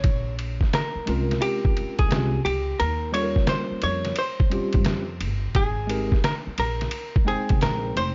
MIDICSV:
0, 0, Header, 1, 6, 480
1, 0, Start_track
1, 0, Tempo, 689655
1, 28, Time_signature, 4, 2, 24, 8
1, 5672, End_track
2, 0, Start_track
2, 0, Title_t, "Hollow-body jazz guitar"
2, 0, Program_c, 0, 26
2, 0, Note_on_c, 0, 73, 90
2, 237, Note_off_c, 0, 73, 0
2, 521, Note_on_c, 0, 70, 81
2, 987, Note_on_c, 0, 67, 79
2, 1009, Note_off_c, 0, 70, 0
2, 1383, Note_off_c, 0, 67, 0
2, 1386, Note_on_c, 0, 68, 82
2, 1701, Note_off_c, 0, 68, 0
2, 1704, Note_on_c, 0, 67, 77
2, 1929, Note_off_c, 0, 67, 0
2, 1946, Note_on_c, 0, 70, 91
2, 2170, Note_off_c, 0, 70, 0
2, 2183, Note_on_c, 0, 73, 102
2, 2426, Note_off_c, 0, 73, 0
2, 2429, Note_on_c, 0, 72, 96
2, 2666, Note_off_c, 0, 72, 0
2, 2669, Note_on_c, 0, 73, 93
2, 2910, Note_off_c, 0, 73, 0
2, 2913, Note_on_c, 0, 72, 88
2, 3603, Note_off_c, 0, 72, 0
2, 3871, Note_on_c, 0, 68, 84
2, 4347, Note_off_c, 0, 68, 0
2, 4350, Note_on_c, 0, 70, 95
2, 4414, Note_off_c, 0, 70, 0
2, 4590, Note_on_c, 0, 70, 87
2, 5041, Note_off_c, 0, 70, 0
2, 5066, Note_on_c, 0, 68, 98
2, 5303, Note_off_c, 0, 68, 0
2, 5306, Note_on_c, 0, 70, 98
2, 5546, Note_off_c, 0, 70, 0
2, 5548, Note_on_c, 0, 72, 105
2, 5672, Note_off_c, 0, 72, 0
2, 5672, End_track
3, 0, Start_track
3, 0, Title_t, "Tine electric piano"
3, 0, Program_c, 1, 4
3, 738, Note_on_c, 1, 56, 64
3, 745, Note_on_c, 1, 60, 60
3, 751, Note_on_c, 1, 61, 61
3, 756, Note_on_c, 1, 65, 61
3, 764, Note_on_c, 1, 70, 75
3, 1430, Note_off_c, 1, 56, 0
3, 1434, Note_off_c, 1, 60, 0
3, 1437, Note_off_c, 1, 61, 0
3, 1439, Note_off_c, 1, 65, 0
3, 1443, Note_off_c, 1, 70, 0
3, 1453, Note_on_c, 1, 56, 68
3, 1461, Note_on_c, 1, 60, 65
3, 1466, Note_on_c, 1, 61, 56
3, 1470, Note_on_c, 1, 65, 60
3, 1476, Note_on_c, 1, 67, 70
3, 1651, Note_off_c, 1, 56, 0
3, 1656, Note_off_c, 1, 60, 0
3, 1658, Note_off_c, 1, 61, 0
3, 1660, Note_off_c, 1, 65, 0
3, 1663, Note_off_c, 1, 67, 0
3, 2174, Note_on_c, 1, 55, 64
3, 2179, Note_on_c, 1, 58, 55
3, 2186, Note_on_c, 1, 61, 55
3, 2191, Note_on_c, 1, 65, 51
3, 2196, Note_on_c, 1, 69, 53
3, 2244, Note_on_c, 1, 70, 66
3, 2251, Note_off_c, 1, 69, 0
3, 2868, Note_off_c, 1, 55, 0
3, 2871, Note_off_c, 1, 58, 0
3, 2874, Note_off_c, 1, 61, 0
3, 2876, Note_off_c, 1, 65, 0
3, 2903, Note_off_c, 1, 70, 0
3, 3130, Note_on_c, 1, 55, 63
3, 3132, Note_on_c, 1, 60, 56
3, 3143, Note_on_c, 1, 61, 56
3, 3147, Note_on_c, 1, 65, 59
3, 3153, Note_on_c, 1, 67, 70
3, 3506, Note_off_c, 1, 55, 0
3, 3507, Note_off_c, 1, 60, 0
3, 3512, Note_off_c, 1, 61, 0
3, 3514, Note_off_c, 1, 65, 0
3, 3517, Note_off_c, 1, 67, 0
3, 4086, Note_on_c, 1, 56, 71
3, 4097, Note_on_c, 1, 60, 54
3, 4101, Note_on_c, 1, 63, 62
3, 4106, Note_on_c, 1, 67, 59
3, 4109, Note_on_c, 1, 70, 71
3, 4288, Note_off_c, 1, 56, 0
3, 4294, Note_off_c, 1, 60, 0
3, 4296, Note_off_c, 1, 63, 0
3, 4298, Note_off_c, 1, 67, 0
3, 4300, Note_off_c, 1, 70, 0
3, 5044, Note_on_c, 1, 56, 69
3, 5051, Note_on_c, 1, 60, 63
3, 5056, Note_on_c, 1, 63, 65
3, 5058, Note_on_c, 1, 79, 64
3, 5064, Note_on_c, 1, 72, 77
3, 5672, Note_off_c, 1, 56, 0
3, 5672, Note_off_c, 1, 60, 0
3, 5672, Note_off_c, 1, 63, 0
3, 5672, Note_off_c, 1, 72, 0
3, 5672, Note_off_c, 1, 79, 0
3, 5672, End_track
4, 0, Start_track
4, 0, Title_t, "Upright bass"
4, 0, Program_c, 2, 32
4, 30, Note_on_c, 2, 34, 92
4, 405, Note_off_c, 2, 34, 0
4, 749, Note_on_c, 2, 36, 75
4, 936, Note_off_c, 2, 36, 0
4, 1387, Note_on_c, 2, 37, 84
4, 1450, Note_off_c, 2, 37, 0
4, 1466, Note_on_c, 2, 36, 89
4, 1654, Note_off_c, 2, 36, 0
4, 1707, Note_on_c, 2, 37, 80
4, 1895, Note_off_c, 2, 37, 0
4, 1951, Note_on_c, 2, 39, 95
4, 2326, Note_off_c, 2, 39, 0
4, 2667, Note_on_c, 2, 41, 88
4, 2855, Note_off_c, 2, 41, 0
4, 3304, Note_on_c, 2, 43, 103
4, 3369, Note_off_c, 2, 43, 0
4, 3381, Note_on_c, 2, 41, 91
4, 3623, Note_on_c, 2, 31, 76
4, 3633, Note_off_c, 2, 41, 0
4, 3813, Note_off_c, 2, 31, 0
4, 3865, Note_on_c, 2, 32, 82
4, 4241, Note_off_c, 2, 32, 0
4, 4582, Note_on_c, 2, 34, 85
4, 4772, Note_off_c, 2, 34, 0
4, 5223, Note_on_c, 2, 36, 92
4, 5288, Note_off_c, 2, 36, 0
4, 5302, Note_on_c, 2, 34, 93
4, 5492, Note_off_c, 2, 34, 0
4, 5540, Note_on_c, 2, 29, 81
4, 5672, Note_off_c, 2, 29, 0
4, 5672, End_track
5, 0, Start_track
5, 0, Title_t, "Muted upright bass strokes"
5, 666, Note_on_c, 9, 29, 48
5, 735, Note_off_c, 9, 29, 0
5, 2587, Note_on_c, 9, 29, 47
5, 2656, Note_off_c, 9, 29, 0
5, 4503, Note_on_c, 9, 29, 52
5, 4572, Note_off_c, 9, 29, 0
5, 5672, End_track
6, 0, Start_track
6, 0, Title_t, "Drums"
6, 26, Note_on_c, 9, 51, 62
6, 28, Note_on_c, 9, 36, 95
6, 96, Note_off_c, 9, 51, 0
6, 98, Note_off_c, 9, 36, 0
6, 270, Note_on_c, 9, 51, 57
6, 339, Note_off_c, 9, 51, 0
6, 423, Note_on_c, 9, 36, 73
6, 436, Note_on_c, 9, 38, 31
6, 492, Note_off_c, 9, 36, 0
6, 505, Note_off_c, 9, 38, 0
6, 510, Note_on_c, 9, 44, 54
6, 510, Note_on_c, 9, 51, 65
6, 512, Note_on_c, 9, 38, 102
6, 580, Note_off_c, 9, 44, 0
6, 580, Note_off_c, 9, 51, 0
6, 582, Note_off_c, 9, 38, 0
6, 746, Note_on_c, 9, 51, 58
6, 815, Note_off_c, 9, 51, 0
6, 913, Note_on_c, 9, 51, 39
6, 919, Note_on_c, 9, 38, 34
6, 983, Note_off_c, 9, 51, 0
6, 986, Note_on_c, 9, 51, 77
6, 989, Note_off_c, 9, 38, 0
6, 1055, Note_off_c, 9, 51, 0
6, 1147, Note_on_c, 9, 36, 103
6, 1217, Note_off_c, 9, 36, 0
6, 1230, Note_on_c, 9, 51, 55
6, 1299, Note_off_c, 9, 51, 0
6, 1383, Note_on_c, 9, 51, 46
6, 1385, Note_on_c, 9, 36, 96
6, 1452, Note_off_c, 9, 51, 0
6, 1455, Note_off_c, 9, 36, 0
6, 1466, Note_on_c, 9, 44, 43
6, 1466, Note_on_c, 9, 51, 56
6, 1476, Note_on_c, 9, 38, 109
6, 1536, Note_off_c, 9, 44, 0
6, 1536, Note_off_c, 9, 51, 0
6, 1545, Note_off_c, 9, 38, 0
6, 1710, Note_on_c, 9, 51, 67
6, 1780, Note_off_c, 9, 51, 0
6, 1947, Note_on_c, 9, 51, 64
6, 2016, Note_off_c, 9, 51, 0
6, 2187, Note_on_c, 9, 51, 67
6, 2256, Note_off_c, 9, 51, 0
6, 2339, Note_on_c, 9, 36, 80
6, 2349, Note_on_c, 9, 38, 30
6, 2408, Note_off_c, 9, 36, 0
6, 2415, Note_on_c, 9, 44, 51
6, 2415, Note_on_c, 9, 51, 67
6, 2417, Note_off_c, 9, 38, 0
6, 2417, Note_on_c, 9, 38, 104
6, 2484, Note_off_c, 9, 44, 0
6, 2484, Note_off_c, 9, 51, 0
6, 2487, Note_off_c, 9, 38, 0
6, 2656, Note_on_c, 9, 51, 62
6, 2726, Note_off_c, 9, 51, 0
6, 2816, Note_on_c, 9, 51, 42
6, 2822, Note_on_c, 9, 38, 31
6, 2886, Note_off_c, 9, 51, 0
6, 2892, Note_off_c, 9, 38, 0
6, 2893, Note_on_c, 9, 51, 77
6, 2962, Note_off_c, 9, 51, 0
6, 3062, Note_on_c, 9, 36, 102
6, 3131, Note_off_c, 9, 36, 0
6, 3142, Note_on_c, 9, 51, 52
6, 3212, Note_off_c, 9, 51, 0
6, 3290, Note_on_c, 9, 51, 46
6, 3301, Note_on_c, 9, 36, 90
6, 3359, Note_off_c, 9, 51, 0
6, 3371, Note_off_c, 9, 36, 0
6, 3373, Note_on_c, 9, 44, 51
6, 3373, Note_on_c, 9, 51, 63
6, 3382, Note_on_c, 9, 38, 98
6, 3442, Note_off_c, 9, 44, 0
6, 3442, Note_off_c, 9, 51, 0
6, 3452, Note_off_c, 9, 38, 0
6, 3623, Note_on_c, 9, 51, 67
6, 3693, Note_off_c, 9, 51, 0
6, 3861, Note_on_c, 9, 51, 62
6, 3863, Note_on_c, 9, 36, 102
6, 3930, Note_off_c, 9, 51, 0
6, 3932, Note_off_c, 9, 36, 0
6, 4103, Note_on_c, 9, 51, 66
6, 4172, Note_off_c, 9, 51, 0
6, 4259, Note_on_c, 9, 36, 81
6, 4271, Note_on_c, 9, 38, 29
6, 4329, Note_off_c, 9, 36, 0
6, 4341, Note_off_c, 9, 38, 0
6, 4342, Note_on_c, 9, 44, 51
6, 4342, Note_on_c, 9, 51, 76
6, 4344, Note_on_c, 9, 38, 102
6, 4411, Note_off_c, 9, 44, 0
6, 4411, Note_off_c, 9, 51, 0
6, 4414, Note_off_c, 9, 38, 0
6, 4578, Note_on_c, 9, 51, 72
6, 4648, Note_off_c, 9, 51, 0
6, 4740, Note_on_c, 9, 51, 39
6, 4746, Note_on_c, 9, 38, 37
6, 4810, Note_off_c, 9, 51, 0
6, 4810, Note_on_c, 9, 51, 72
6, 4815, Note_off_c, 9, 38, 0
6, 4880, Note_off_c, 9, 51, 0
6, 4982, Note_on_c, 9, 36, 110
6, 5052, Note_off_c, 9, 36, 0
6, 5066, Note_on_c, 9, 51, 53
6, 5136, Note_off_c, 9, 51, 0
6, 5214, Note_on_c, 9, 51, 42
6, 5222, Note_on_c, 9, 36, 108
6, 5284, Note_off_c, 9, 51, 0
6, 5291, Note_off_c, 9, 36, 0
6, 5298, Note_on_c, 9, 44, 46
6, 5298, Note_on_c, 9, 51, 67
6, 5308, Note_on_c, 9, 38, 102
6, 5368, Note_off_c, 9, 44, 0
6, 5368, Note_off_c, 9, 51, 0
6, 5377, Note_off_c, 9, 38, 0
6, 5545, Note_on_c, 9, 51, 63
6, 5615, Note_off_c, 9, 51, 0
6, 5672, End_track
0, 0, End_of_file